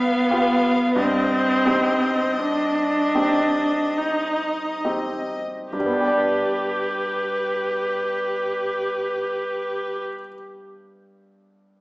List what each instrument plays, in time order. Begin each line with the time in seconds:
Already playing: grand piano B3 F4 G4, viola B3, violin F5
0.30 grand piano B3 F4 G4
0.96 grand piano G2, viola C4, violin D#5
1.65 grand piano C4 D#4 G4
2.38 viola D4
3.15 grand piano C4 D#4 G4
3.98 viola D#4
4.85 grand piano C4 D#4 G4
5.73 grand piano G2, viola G4, violin B4
5.79 grand piano G3
5.86 grand piano B3
5.93 grand piano D4
6.00 grand piano G4
6.08 grand piano D5